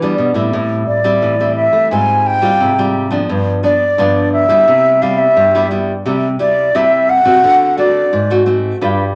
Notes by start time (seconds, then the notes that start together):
Already playing: D3 E3
0.02 G3 B3 D4
0.18 B2
0.34 A2 G3 C4 E4
0.53 A2
0.87 D5
1.04 G3 C4 E4
1.22 A2 E3
1.40 G3 C4 E4
1.56 E5
1.73 A3
1.91 G#2 G3 C4 F4 G#5
2.26 G5
2.42 G3 C4 F4
2.60 G#2 C3
2.78 G3 C4 F4
3.11 F3 B3 D4
3.29 G2
3.63 F3 B3 D4 D5
3.98 G2 D3 F3 B3 D4
4.33 E5
4.48 G3 B3 E4
4.68 C3
5.02 G3 B3 E4 F5
5.18 E5
5.36 G2 G3
5.55 G3 B3 E4
5.71 G3 B3 E4
6.06 C3 G3 A3 E4
6.39 G3 A3 E4 D5
6.75 C3 G3 A3 E4 E5
7.10 F#5
7.25 C3 A3 C4 F#4
7.43 D3
7.77 A3 C4 F#4 D5
8.13 G#2
8.30 A3 C4 F#4
8.46 A3 C4 F#4
8.81 G2 G3 D4 F4 B4